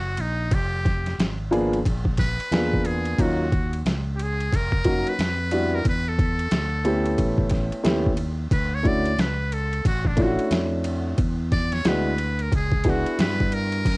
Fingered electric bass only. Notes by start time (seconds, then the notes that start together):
Already playing: F#1
0.18 A#1
0.51 F1
1.18 G#1
1.85 A#1
2.39 muted fingered electric bass stroke
2.51 E2
3.18 D#2
3.85 C#2
4.53 F1
5.05 muted fingered electric bass stroke
5.19 F2
5.85 E2
6.51 D2
7.18 A1
7.71 muted fingered electric bass stroke
7.85 D#2
8.51 D2
9.18 C#2
9.85 A1
10.38 muted fingered electric bass stroke
10.51 F2
11.18 E2
11.85 D2
12.52 C#2
13.05 muted fingered electric bass stroke
13.19 G2
13.85 F#2